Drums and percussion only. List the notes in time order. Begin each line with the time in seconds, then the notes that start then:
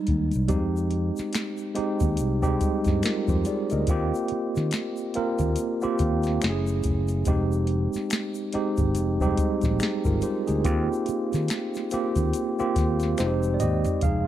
0.07 kick, closed hi-hat
0.31 closed hi-hat, shaker
0.48 kick, closed hi-hat, shaker
0.77 shaker
0.91 closed hi-hat
1.17 snare, shaker
1.33 finger snap, snare, closed hi-hat, shaker
1.57 shaker
1.75 closed hi-hat
2.00 kick, closed hi-hat, shaker
2.17 closed hi-hat, shaker
2.43 kick, shaker
2.61 kick, closed hi-hat, shaker
2.84 kick, snare, closed hi-hat, shaker
3.03 finger snap, snare, closed hi-hat, shaker
3.28 kick, shaker
3.45 closed hi-hat, shaker
3.70 closed hi-hat, shaker
3.87 kick, closed hi-hat, shaker
4.15 shaker
4.28 closed hi-hat
4.56 snare, shaker
4.71 finger snap, snare, closed hi-hat, shaker
4.97 shaker
5.14 closed hi-hat
5.39 kick, closed hi-hat, shaker
5.56 closed hi-hat, shaker
5.81 shaker
5.99 kick, closed hi-hat, shaker
6.23 snare, closed hi-hat, shaker
6.42 finger snap, snare, closed hi-hat, shaker
6.67 shaker
6.83 kick, closed hi-hat, shaker
7.08 closed hi-hat, shaker
7.25 kick, closed hi-hat, shaker
7.52 shaker
7.67 closed hi-hat
7.93 snare, shaker
8.10 finger snap, snare, closed hi-hat, shaker
8.35 shaker
8.53 closed hi-hat
8.77 kick, closed hi-hat, shaker
8.95 closed hi-hat, shaker
9.20 kick, shaker
9.37 kick, closed hi-hat, shaker
9.61 kick, snare, closed hi-hat, shaker
9.80 finger snap, snare, closed hi-hat, shaker
10.05 kick, shaker
10.22 closed hi-hat, shaker
10.47 closed hi-hat, shaker
10.64 kick, closed hi-hat, shaker
10.93 shaker
11.06 closed hi-hat, shaker
11.33 snare, closed hi-hat, shaker
11.48 finger snap, snare, closed hi-hat, shaker
11.74 snare, shaker
11.91 closed hi-hat, shaker
12.16 kick, closed hi-hat, shaker
12.33 closed hi-hat, shaker
12.59 shaker
12.76 kick, snare, closed hi-hat, shaker
13.00 snare, closed hi-hat, shaker
13.18 finger snap, snare, closed hi-hat, shaker
13.43 shaker
13.60 closed hi-hat, mid tom, shaker
13.85 closed hi-hat, floor tom, shaker
14.01 kick, closed hi-hat, shaker